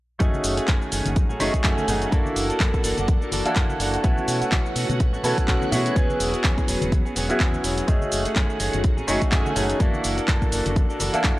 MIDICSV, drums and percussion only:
0, 0, Header, 1, 2, 480
1, 0, Start_track
1, 0, Tempo, 480000
1, 202, Time_signature, 4, 2, 24, 8
1, 11393, End_track
2, 0, Start_track
2, 0, Title_t, "Drums"
2, 201, Note_on_c, 9, 42, 52
2, 203, Note_on_c, 9, 36, 123
2, 203, Note_on_c, 9, 82, 43
2, 301, Note_off_c, 9, 42, 0
2, 303, Note_off_c, 9, 36, 0
2, 303, Note_off_c, 9, 82, 0
2, 339, Note_on_c, 9, 63, 90
2, 340, Note_on_c, 9, 82, 21
2, 438, Note_on_c, 9, 46, 103
2, 439, Note_off_c, 9, 63, 0
2, 440, Note_off_c, 9, 82, 0
2, 440, Note_on_c, 9, 82, 78
2, 538, Note_off_c, 9, 46, 0
2, 540, Note_off_c, 9, 82, 0
2, 574, Note_on_c, 9, 42, 64
2, 576, Note_on_c, 9, 82, 32
2, 674, Note_off_c, 9, 42, 0
2, 676, Note_off_c, 9, 82, 0
2, 676, Note_on_c, 9, 39, 123
2, 677, Note_on_c, 9, 82, 50
2, 679, Note_on_c, 9, 42, 55
2, 681, Note_off_c, 9, 82, 0
2, 681, Note_on_c, 9, 82, 45
2, 683, Note_on_c, 9, 36, 121
2, 685, Note_on_c, 9, 63, 57
2, 776, Note_off_c, 9, 39, 0
2, 779, Note_off_c, 9, 42, 0
2, 781, Note_off_c, 9, 82, 0
2, 783, Note_off_c, 9, 36, 0
2, 785, Note_off_c, 9, 63, 0
2, 818, Note_on_c, 9, 82, 22
2, 918, Note_off_c, 9, 82, 0
2, 919, Note_on_c, 9, 46, 110
2, 921, Note_on_c, 9, 82, 81
2, 1019, Note_off_c, 9, 46, 0
2, 1021, Note_off_c, 9, 82, 0
2, 1056, Note_on_c, 9, 42, 64
2, 1056, Note_on_c, 9, 63, 97
2, 1058, Note_on_c, 9, 82, 32
2, 1156, Note_off_c, 9, 42, 0
2, 1156, Note_off_c, 9, 63, 0
2, 1158, Note_off_c, 9, 82, 0
2, 1161, Note_on_c, 9, 42, 53
2, 1163, Note_on_c, 9, 36, 124
2, 1163, Note_on_c, 9, 82, 42
2, 1261, Note_off_c, 9, 42, 0
2, 1263, Note_off_c, 9, 36, 0
2, 1263, Note_off_c, 9, 82, 0
2, 1298, Note_on_c, 9, 64, 81
2, 1300, Note_on_c, 9, 82, 23
2, 1398, Note_off_c, 9, 64, 0
2, 1398, Note_on_c, 9, 63, 66
2, 1400, Note_off_c, 9, 82, 0
2, 1401, Note_on_c, 9, 46, 98
2, 1403, Note_on_c, 9, 82, 71
2, 1404, Note_off_c, 9, 82, 0
2, 1404, Note_on_c, 9, 82, 98
2, 1498, Note_off_c, 9, 63, 0
2, 1501, Note_off_c, 9, 46, 0
2, 1505, Note_off_c, 9, 82, 0
2, 1539, Note_on_c, 9, 42, 68
2, 1540, Note_on_c, 9, 36, 56
2, 1541, Note_on_c, 9, 82, 33
2, 1639, Note_off_c, 9, 42, 0
2, 1639, Note_on_c, 9, 39, 126
2, 1640, Note_off_c, 9, 36, 0
2, 1641, Note_off_c, 9, 82, 0
2, 1642, Note_on_c, 9, 42, 53
2, 1643, Note_on_c, 9, 36, 114
2, 1644, Note_on_c, 9, 82, 41
2, 1739, Note_off_c, 9, 39, 0
2, 1742, Note_off_c, 9, 42, 0
2, 1743, Note_off_c, 9, 36, 0
2, 1744, Note_off_c, 9, 82, 0
2, 1780, Note_on_c, 9, 63, 86
2, 1780, Note_on_c, 9, 82, 23
2, 1874, Note_off_c, 9, 82, 0
2, 1874, Note_on_c, 9, 82, 94
2, 1880, Note_off_c, 9, 63, 0
2, 1881, Note_on_c, 9, 46, 102
2, 1883, Note_off_c, 9, 82, 0
2, 1883, Note_on_c, 9, 82, 77
2, 1885, Note_on_c, 9, 64, 87
2, 1981, Note_off_c, 9, 46, 0
2, 1983, Note_off_c, 9, 82, 0
2, 1985, Note_off_c, 9, 64, 0
2, 2018, Note_on_c, 9, 42, 67
2, 2020, Note_on_c, 9, 82, 33
2, 2118, Note_off_c, 9, 42, 0
2, 2120, Note_off_c, 9, 82, 0
2, 2123, Note_on_c, 9, 42, 51
2, 2124, Note_on_c, 9, 36, 122
2, 2125, Note_on_c, 9, 82, 42
2, 2223, Note_off_c, 9, 42, 0
2, 2224, Note_off_c, 9, 36, 0
2, 2225, Note_off_c, 9, 82, 0
2, 2256, Note_on_c, 9, 63, 86
2, 2262, Note_on_c, 9, 82, 21
2, 2356, Note_off_c, 9, 63, 0
2, 2362, Note_off_c, 9, 82, 0
2, 2362, Note_on_c, 9, 46, 106
2, 2364, Note_on_c, 9, 82, 72
2, 2462, Note_off_c, 9, 46, 0
2, 2464, Note_off_c, 9, 82, 0
2, 2499, Note_on_c, 9, 42, 62
2, 2501, Note_on_c, 9, 82, 30
2, 2599, Note_off_c, 9, 42, 0
2, 2599, Note_off_c, 9, 82, 0
2, 2599, Note_on_c, 9, 39, 124
2, 2599, Note_on_c, 9, 82, 47
2, 2600, Note_on_c, 9, 63, 61
2, 2602, Note_on_c, 9, 42, 53
2, 2604, Note_off_c, 9, 82, 0
2, 2604, Note_on_c, 9, 36, 121
2, 2604, Note_on_c, 9, 82, 43
2, 2699, Note_off_c, 9, 39, 0
2, 2700, Note_off_c, 9, 63, 0
2, 2702, Note_off_c, 9, 42, 0
2, 2704, Note_off_c, 9, 36, 0
2, 2704, Note_off_c, 9, 82, 0
2, 2739, Note_on_c, 9, 64, 83
2, 2739, Note_on_c, 9, 82, 22
2, 2740, Note_on_c, 9, 36, 63
2, 2839, Note_off_c, 9, 64, 0
2, 2839, Note_off_c, 9, 82, 0
2, 2840, Note_off_c, 9, 36, 0
2, 2840, Note_on_c, 9, 46, 113
2, 2842, Note_on_c, 9, 82, 79
2, 2940, Note_off_c, 9, 46, 0
2, 2942, Note_off_c, 9, 82, 0
2, 2977, Note_on_c, 9, 42, 61
2, 2978, Note_on_c, 9, 63, 87
2, 2978, Note_on_c, 9, 82, 42
2, 2979, Note_off_c, 9, 82, 0
2, 2979, Note_on_c, 9, 82, 32
2, 3077, Note_off_c, 9, 42, 0
2, 3078, Note_off_c, 9, 63, 0
2, 3079, Note_off_c, 9, 82, 0
2, 3081, Note_on_c, 9, 42, 54
2, 3083, Note_on_c, 9, 82, 41
2, 3084, Note_on_c, 9, 36, 127
2, 3181, Note_off_c, 9, 42, 0
2, 3183, Note_off_c, 9, 82, 0
2, 3184, Note_off_c, 9, 36, 0
2, 3219, Note_on_c, 9, 82, 21
2, 3314, Note_on_c, 9, 63, 64
2, 3319, Note_off_c, 9, 82, 0
2, 3320, Note_on_c, 9, 82, 87
2, 3321, Note_on_c, 9, 46, 103
2, 3323, Note_off_c, 9, 82, 0
2, 3323, Note_on_c, 9, 82, 72
2, 3414, Note_off_c, 9, 63, 0
2, 3421, Note_off_c, 9, 46, 0
2, 3423, Note_off_c, 9, 82, 0
2, 3449, Note_on_c, 9, 82, 37
2, 3456, Note_on_c, 9, 42, 61
2, 3458, Note_off_c, 9, 82, 0
2, 3458, Note_on_c, 9, 82, 31
2, 3556, Note_off_c, 9, 42, 0
2, 3556, Note_on_c, 9, 39, 115
2, 3558, Note_off_c, 9, 82, 0
2, 3559, Note_on_c, 9, 42, 55
2, 3561, Note_on_c, 9, 82, 44
2, 3563, Note_on_c, 9, 36, 113
2, 3656, Note_off_c, 9, 39, 0
2, 3659, Note_off_c, 9, 42, 0
2, 3661, Note_off_c, 9, 82, 0
2, 3663, Note_off_c, 9, 36, 0
2, 3695, Note_on_c, 9, 63, 97
2, 3697, Note_on_c, 9, 82, 22
2, 3795, Note_off_c, 9, 63, 0
2, 3797, Note_off_c, 9, 82, 0
2, 3798, Note_on_c, 9, 82, 82
2, 3800, Note_on_c, 9, 46, 112
2, 3802, Note_off_c, 9, 82, 0
2, 3802, Note_on_c, 9, 82, 76
2, 3900, Note_off_c, 9, 46, 0
2, 3902, Note_off_c, 9, 82, 0
2, 3938, Note_on_c, 9, 42, 65
2, 3940, Note_on_c, 9, 82, 33
2, 4038, Note_off_c, 9, 42, 0
2, 4039, Note_off_c, 9, 82, 0
2, 4039, Note_on_c, 9, 42, 49
2, 4041, Note_on_c, 9, 82, 41
2, 4043, Note_on_c, 9, 36, 127
2, 4139, Note_off_c, 9, 42, 0
2, 4141, Note_off_c, 9, 82, 0
2, 4143, Note_off_c, 9, 36, 0
2, 4176, Note_on_c, 9, 63, 82
2, 4177, Note_on_c, 9, 82, 20
2, 4276, Note_off_c, 9, 63, 0
2, 4277, Note_off_c, 9, 82, 0
2, 4279, Note_on_c, 9, 46, 109
2, 4281, Note_on_c, 9, 82, 71
2, 4282, Note_off_c, 9, 82, 0
2, 4282, Note_on_c, 9, 82, 80
2, 4379, Note_off_c, 9, 46, 0
2, 4382, Note_off_c, 9, 82, 0
2, 4417, Note_on_c, 9, 42, 57
2, 4419, Note_on_c, 9, 82, 28
2, 4516, Note_off_c, 9, 82, 0
2, 4516, Note_on_c, 9, 82, 51
2, 4517, Note_off_c, 9, 42, 0
2, 4517, Note_on_c, 9, 63, 58
2, 4518, Note_on_c, 9, 39, 122
2, 4521, Note_on_c, 9, 42, 53
2, 4523, Note_off_c, 9, 82, 0
2, 4523, Note_on_c, 9, 36, 124
2, 4523, Note_on_c, 9, 82, 41
2, 4617, Note_off_c, 9, 63, 0
2, 4618, Note_off_c, 9, 39, 0
2, 4621, Note_off_c, 9, 42, 0
2, 4623, Note_off_c, 9, 36, 0
2, 4623, Note_off_c, 9, 82, 0
2, 4658, Note_on_c, 9, 82, 21
2, 4758, Note_off_c, 9, 82, 0
2, 4758, Note_on_c, 9, 46, 109
2, 4760, Note_on_c, 9, 82, 74
2, 4858, Note_off_c, 9, 46, 0
2, 4860, Note_off_c, 9, 82, 0
2, 4892, Note_on_c, 9, 82, 37
2, 4896, Note_on_c, 9, 63, 98
2, 4897, Note_on_c, 9, 42, 61
2, 4899, Note_off_c, 9, 82, 0
2, 4899, Note_on_c, 9, 82, 32
2, 4994, Note_off_c, 9, 82, 0
2, 4994, Note_on_c, 9, 82, 50
2, 4996, Note_off_c, 9, 63, 0
2, 4997, Note_off_c, 9, 42, 0
2, 5000, Note_on_c, 9, 42, 50
2, 5002, Note_off_c, 9, 82, 0
2, 5002, Note_on_c, 9, 36, 120
2, 5002, Note_on_c, 9, 82, 42
2, 5100, Note_off_c, 9, 42, 0
2, 5102, Note_off_c, 9, 36, 0
2, 5102, Note_off_c, 9, 82, 0
2, 5135, Note_on_c, 9, 64, 78
2, 5139, Note_on_c, 9, 82, 22
2, 5230, Note_off_c, 9, 82, 0
2, 5230, Note_on_c, 9, 82, 93
2, 5231, Note_on_c, 9, 63, 63
2, 5235, Note_off_c, 9, 64, 0
2, 5241, Note_on_c, 9, 46, 102
2, 5243, Note_off_c, 9, 82, 0
2, 5243, Note_on_c, 9, 82, 68
2, 5331, Note_off_c, 9, 63, 0
2, 5341, Note_off_c, 9, 46, 0
2, 5343, Note_off_c, 9, 82, 0
2, 5379, Note_on_c, 9, 36, 59
2, 5379, Note_on_c, 9, 42, 62
2, 5381, Note_on_c, 9, 82, 29
2, 5479, Note_off_c, 9, 36, 0
2, 5479, Note_off_c, 9, 42, 0
2, 5479, Note_on_c, 9, 39, 119
2, 5481, Note_off_c, 9, 82, 0
2, 5482, Note_on_c, 9, 36, 118
2, 5482, Note_on_c, 9, 42, 49
2, 5484, Note_on_c, 9, 82, 42
2, 5579, Note_off_c, 9, 39, 0
2, 5582, Note_off_c, 9, 36, 0
2, 5582, Note_off_c, 9, 42, 0
2, 5584, Note_off_c, 9, 82, 0
2, 5616, Note_on_c, 9, 63, 97
2, 5620, Note_on_c, 9, 82, 22
2, 5714, Note_off_c, 9, 82, 0
2, 5714, Note_on_c, 9, 82, 95
2, 5716, Note_off_c, 9, 63, 0
2, 5720, Note_on_c, 9, 64, 92
2, 5724, Note_on_c, 9, 46, 115
2, 5726, Note_off_c, 9, 82, 0
2, 5726, Note_on_c, 9, 82, 73
2, 5820, Note_off_c, 9, 64, 0
2, 5824, Note_off_c, 9, 46, 0
2, 5826, Note_off_c, 9, 82, 0
2, 5859, Note_on_c, 9, 42, 63
2, 5861, Note_on_c, 9, 82, 30
2, 5959, Note_off_c, 9, 42, 0
2, 5961, Note_off_c, 9, 82, 0
2, 5962, Note_on_c, 9, 36, 127
2, 5962, Note_on_c, 9, 42, 48
2, 5964, Note_on_c, 9, 82, 42
2, 6062, Note_off_c, 9, 36, 0
2, 6062, Note_off_c, 9, 42, 0
2, 6064, Note_off_c, 9, 82, 0
2, 6100, Note_on_c, 9, 63, 94
2, 6101, Note_on_c, 9, 82, 21
2, 6200, Note_off_c, 9, 63, 0
2, 6201, Note_off_c, 9, 82, 0
2, 6202, Note_on_c, 9, 46, 105
2, 6204, Note_on_c, 9, 82, 75
2, 6302, Note_off_c, 9, 46, 0
2, 6304, Note_off_c, 9, 82, 0
2, 6338, Note_on_c, 9, 42, 59
2, 6340, Note_on_c, 9, 82, 29
2, 6438, Note_off_c, 9, 42, 0
2, 6438, Note_on_c, 9, 39, 123
2, 6440, Note_off_c, 9, 82, 0
2, 6441, Note_on_c, 9, 42, 51
2, 6442, Note_on_c, 9, 36, 120
2, 6443, Note_on_c, 9, 63, 59
2, 6443, Note_on_c, 9, 82, 45
2, 6444, Note_off_c, 9, 82, 0
2, 6444, Note_on_c, 9, 82, 52
2, 6538, Note_off_c, 9, 39, 0
2, 6541, Note_off_c, 9, 42, 0
2, 6542, Note_off_c, 9, 36, 0
2, 6543, Note_off_c, 9, 63, 0
2, 6544, Note_off_c, 9, 82, 0
2, 6578, Note_on_c, 9, 36, 66
2, 6580, Note_on_c, 9, 82, 21
2, 6581, Note_on_c, 9, 64, 69
2, 6586, Note_off_c, 9, 82, 0
2, 6586, Note_on_c, 9, 82, 33
2, 6678, Note_off_c, 9, 36, 0
2, 6681, Note_off_c, 9, 64, 0
2, 6682, Note_on_c, 9, 46, 112
2, 6684, Note_off_c, 9, 82, 0
2, 6684, Note_on_c, 9, 82, 76
2, 6782, Note_off_c, 9, 46, 0
2, 6784, Note_off_c, 9, 82, 0
2, 6811, Note_on_c, 9, 82, 39
2, 6814, Note_on_c, 9, 63, 94
2, 6819, Note_on_c, 9, 42, 57
2, 6821, Note_off_c, 9, 82, 0
2, 6821, Note_on_c, 9, 82, 32
2, 6914, Note_off_c, 9, 63, 0
2, 6919, Note_off_c, 9, 42, 0
2, 6921, Note_off_c, 9, 82, 0
2, 6922, Note_on_c, 9, 36, 121
2, 6924, Note_on_c, 9, 42, 52
2, 6926, Note_on_c, 9, 82, 45
2, 7022, Note_off_c, 9, 36, 0
2, 7024, Note_off_c, 9, 42, 0
2, 7026, Note_off_c, 9, 82, 0
2, 7061, Note_on_c, 9, 82, 21
2, 7161, Note_off_c, 9, 82, 0
2, 7161, Note_on_c, 9, 46, 101
2, 7161, Note_on_c, 9, 63, 68
2, 7162, Note_on_c, 9, 82, 82
2, 7163, Note_off_c, 9, 82, 0
2, 7163, Note_on_c, 9, 82, 71
2, 7261, Note_off_c, 9, 46, 0
2, 7261, Note_off_c, 9, 63, 0
2, 7263, Note_off_c, 9, 82, 0
2, 7297, Note_on_c, 9, 82, 34
2, 7298, Note_on_c, 9, 42, 63
2, 7300, Note_off_c, 9, 82, 0
2, 7300, Note_on_c, 9, 82, 30
2, 7398, Note_off_c, 9, 42, 0
2, 7399, Note_on_c, 9, 39, 115
2, 7400, Note_off_c, 9, 82, 0
2, 7402, Note_on_c, 9, 36, 113
2, 7402, Note_on_c, 9, 42, 48
2, 7404, Note_on_c, 9, 82, 42
2, 7499, Note_off_c, 9, 39, 0
2, 7502, Note_off_c, 9, 36, 0
2, 7502, Note_off_c, 9, 42, 0
2, 7504, Note_off_c, 9, 82, 0
2, 7528, Note_on_c, 9, 63, 93
2, 7536, Note_on_c, 9, 82, 36
2, 7540, Note_off_c, 9, 82, 0
2, 7540, Note_on_c, 9, 82, 22
2, 7628, Note_off_c, 9, 63, 0
2, 7640, Note_off_c, 9, 82, 0
2, 7641, Note_on_c, 9, 46, 108
2, 7643, Note_on_c, 9, 82, 76
2, 7741, Note_off_c, 9, 46, 0
2, 7743, Note_off_c, 9, 82, 0
2, 7776, Note_on_c, 9, 42, 60
2, 7778, Note_on_c, 9, 82, 31
2, 7876, Note_off_c, 9, 42, 0
2, 7878, Note_off_c, 9, 82, 0
2, 7880, Note_on_c, 9, 42, 48
2, 7882, Note_on_c, 9, 36, 125
2, 7882, Note_on_c, 9, 82, 46
2, 7980, Note_off_c, 9, 42, 0
2, 7982, Note_off_c, 9, 36, 0
2, 7982, Note_off_c, 9, 82, 0
2, 8013, Note_on_c, 9, 63, 91
2, 8019, Note_on_c, 9, 82, 22
2, 8113, Note_off_c, 9, 63, 0
2, 8118, Note_on_c, 9, 46, 104
2, 8119, Note_off_c, 9, 82, 0
2, 8120, Note_on_c, 9, 82, 76
2, 8218, Note_off_c, 9, 46, 0
2, 8220, Note_off_c, 9, 82, 0
2, 8254, Note_on_c, 9, 42, 60
2, 8256, Note_on_c, 9, 82, 32
2, 8354, Note_off_c, 9, 42, 0
2, 8356, Note_off_c, 9, 82, 0
2, 8356, Note_on_c, 9, 39, 122
2, 8358, Note_on_c, 9, 82, 51
2, 8360, Note_on_c, 9, 42, 53
2, 8360, Note_on_c, 9, 63, 68
2, 8361, Note_off_c, 9, 82, 0
2, 8361, Note_on_c, 9, 82, 47
2, 8363, Note_on_c, 9, 36, 115
2, 8456, Note_off_c, 9, 39, 0
2, 8460, Note_off_c, 9, 42, 0
2, 8460, Note_off_c, 9, 63, 0
2, 8461, Note_off_c, 9, 82, 0
2, 8463, Note_off_c, 9, 36, 0
2, 8498, Note_on_c, 9, 82, 22
2, 8598, Note_off_c, 9, 82, 0
2, 8599, Note_on_c, 9, 46, 107
2, 8601, Note_on_c, 9, 82, 78
2, 8699, Note_off_c, 9, 46, 0
2, 8701, Note_off_c, 9, 82, 0
2, 8734, Note_on_c, 9, 42, 60
2, 8736, Note_on_c, 9, 63, 84
2, 8736, Note_on_c, 9, 82, 32
2, 8741, Note_off_c, 9, 82, 0
2, 8741, Note_on_c, 9, 82, 37
2, 8834, Note_off_c, 9, 42, 0
2, 8836, Note_off_c, 9, 63, 0
2, 8838, Note_on_c, 9, 42, 49
2, 8840, Note_off_c, 9, 82, 0
2, 8840, Note_on_c, 9, 82, 43
2, 8843, Note_on_c, 9, 36, 114
2, 8938, Note_off_c, 9, 42, 0
2, 8940, Note_off_c, 9, 82, 0
2, 8943, Note_off_c, 9, 36, 0
2, 8976, Note_on_c, 9, 64, 76
2, 8978, Note_on_c, 9, 82, 22
2, 9076, Note_off_c, 9, 64, 0
2, 9078, Note_off_c, 9, 82, 0
2, 9079, Note_on_c, 9, 46, 96
2, 9079, Note_on_c, 9, 63, 61
2, 9081, Note_on_c, 9, 82, 76
2, 9087, Note_off_c, 9, 82, 0
2, 9087, Note_on_c, 9, 82, 87
2, 9179, Note_off_c, 9, 46, 0
2, 9179, Note_off_c, 9, 63, 0
2, 9187, Note_off_c, 9, 82, 0
2, 9216, Note_on_c, 9, 42, 62
2, 9218, Note_on_c, 9, 82, 34
2, 9219, Note_on_c, 9, 36, 56
2, 9316, Note_off_c, 9, 42, 0
2, 9318, Note_off_c, 9, 82, 0
2, 9318, Note_on_c, 9, 39, 113
2, 9319, Note_off_c, 9, 36, 0
2, 9321, Note_on_c, 9, 42, 50
2, 9323, Note_on_c, 9, 36, 122
2, 9323, Note_on_c, 9, 82, 44
2, 9418, Note_off_c, 9, 39, 0
2, 9421, Note_off_c, 9, 42, 0
2, 9423, Note_off_c, 9, 36, 0
2, 9423, Note_off_c, 9, 82, 0
2, 9461, Note_on_c, 9, 82, 23
2, 9462, Note_on_c, 9, 63, 97
2, 9561, Note_off_c, 9, 82, 0
2, 9561, Note_on_c, 9, 46, 111
2, 9561, Note_on_c, 9, 82, 86
2, 9562, Note_off_c, 9, 63, 0
2, 9562, Note_off_c, 9, 82, 0
2, 9562, Note_on_c, 9, 82, 77
2, 9564, Note_on_c, 9, 64, 81
2, 9661, Note_off_c, 9, 46, 0
2, 9662, Note_off_c, 9, 82, 0
2, 9664, Note_off_c, 9, 64, 0
2, 9696, Note_on_c, 9, 42, 63
2, 9698, Note_on_c, 9, 82, 35
2, 9796, Note_off_c, 9, 42, 0
2, 9798, Note_off_c, 9, 82, 0
2, 9801, Note_on_c, 9, 42, 51
2, 9803, Note_on_c, 9, 36, 121
2, 9803, Note_on_c, 9, 82, 45
2, 9901, Note_off_c, 9, 42, 0
2, 9903, Note_off_c, 9, 36, 0
2, 9903, Note_off_c, 9, 82, 0
2, 9937, Note_on_c, 9, 63, 82
2, 9940, Note_on_c, 9, 82, 22
2, 10037, Note_off_c, 9, 63, 0
2, 10040, Note_off_c, 9, 82, 0
2, 10040, Note_on_c, 9, 46, 101
2, 10042, Note_on_c, 9, 82, 82
2, 10044, Note_off_c, 9, 82, 0
2, 10044, Note_on_c, 9, 82, 92
2, 10140, Note_off_c, 9, 46, 0
2, 10144, Note_off_c, 9, 82, 0
2, 10178, Note_on_c, 9, 42, 61
2, 10180, Note_on_c, 9, 82, 33
2, 10278, Note_off_c, 9, 42, 0
2, 10278, Note_on_c, 9, 39, 115
2, 10280, Note_off_c, 9, 82, 0
2, 10281, Note_on_c, 9, 42, 53
2, 10283, Note_on_c, 9, 36, 113
2, 10283, Note_on_c, 9, 63, 63
2, 10283, Note_on_c, 9, 82, 45
2, 10378, Note_off_c, 9, 39, 0
2, 10381, Note_off_c, 9, 42, 0
2, 10383, Note_off_c, 9, 36, 0
2, 10383, Note_off_c, 9, 63, 0
2, 10383, Note_off_c, 9, 82, 0
2, 10412, Note_on_c, 9, 64, 75
2, 10419, Note_on_c, 9, 36, 61
2, 10421, Note_on_c, 9, 82, 22
2, 10512, Note_off_c, 9, 64, 0
2, 10519, Note_off_c, 9, 36, 0
2, 10521, Note_off_c, 9, 82, 0
2, 10522, Note_on_c, 9, 46, 103
2, 10524, Note_on_c, 9, 82, 84
2, 10622, Note_off_c, 9, 46, 0
2, 10624, Note_off_c, 9, 82, 0
2, 10658, Note_on_c, 9, 42, 64
2, 10660, Note_on_c, 9, 82, 35
2, 10663, Note_on_c, 9, 63, 88
2, 10758, Note_off_c, 9, 42, 0
2, 10760, Note_off_c, 9, 82, 0
2, 10762, Note_on_c, 9, 36, 117
2, 10762, Note_on_c, 9, 42, 55
2, 10763, Note_off_c, 9, 63, 0
2, 10764, Note_on_c, 9, 82, 45
2, 10862, Note_off_c, 9, 36, 0
2, 10862, Note_off_c, 9, 42, 0
2, 10864, Note_off_c, 9, 82, 0
2, 10900, Note_on_c, 9, 82, 23
2, 11000, Note_off_c, 9, 82, 0
2, 11000, Note_on_c, 9, 46, 99
2, 11002, Note_on_c, 9, 82, 75
2, 11005, Note_on_c, 9, 63, 59
2, 11100, Note_off_c, 9, 46, 0
2, 11102, Note_off_c, 9, 82, 0
2, 11105, Note_off_c, 9, 63, 0
2, 11138, Note_on_c, 9, 42, 63
2, 11140, Note_on_c, 9, 82, 43
2, 11238, Note_off_c, 9, 42, 0
2, 11238, Note_on_c, 9, 39, 110
2, 11240, Note_off_c, 9, 82, 0
2, 11241, Note_on_c, 9, 42, 52
2, 11242, Note_on_c, 9, 36, 113
2, 11243, Note_on_c, 9, 82, 45
2, 11338, Note_off_c, 9, 39, 0
2, 11341, Note_off_c, 9, 42, 0
2, 11342, Note_off_c, 9, 36, 0
2, 11343, Note_off_c, 9, 82, 0
2, 11393, End_track
0, 0, End_of_file